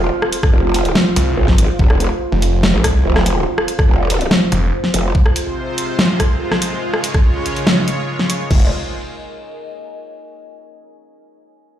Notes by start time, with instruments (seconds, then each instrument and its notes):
Already playing: ambient pad F4 C5 F5
0.22 cross-stick
0.33 closed hi-hat
0.43 kick, cross-stick
0.53 wobble bass F1
0.74 open hi-hat
0.85 closed hi-hat
0.95 snare
1.16 detuned saw bass C2, closed hi-hat
1.37 wobble bass G#1
1.48 kick, snare
1.58 closed hi-hat
1.79 wobble bass F1, kick
1.90 cross-stick
2.00 closed hi-hat
2.32 detuned saw bass F1
2.42 open hi-hat
2.63 snare
2.74 wobble bass G#1
2.84 detuned saw bass C2, kick, cross-stick, closed hi-hat
3.05 wobble bass F1
3.16 cross-stick, snare
3.26 closed hi-hat
3.58 cross-stick
3.68 closed hi-hat
3.79 kick, cross-stick
3.89 wobble bass F1
4.10 open hi-hat
4.21 closed hi-hat
4.31 snare
4.52 detuned saw bass F1, closed hi-hat
4.84 snare
4.94 wobble bass F1, closed hi-hat
5.15 supersaw synth C3 G#3 F4 C5, ambient pad F4, kick
5.23 ambient pad A#4, cross-stick
5.36 closed hi-hat
5.60 ambient pad G#5
5.78 closed hi-hat
5.91 ambient pad D#5
5.99 snare
6.20 kick, cross-stick, closed hi-hat
6.52 cross-stick, snare
6.62 closed hi-hat
6.83 supersaw synth C#3 C#5, ambient pad G#4
6.94 cross-stick
7.04 closed hi-hat
7.14 kick, cross-stick
7.21 ambient pad C#5
7.46 closed hi-hat
7.56 closed hi-hat
7.67 snare
7.88 closed hi-hat
8.19 snare
8.30 closed hi-hat
8.50 wobble bass F1, supersaw synth C3 G#3 F4 C5, ambient pad A#4, kick, crash
8.57 ambient pad D#5
8.63 ambient pad G#5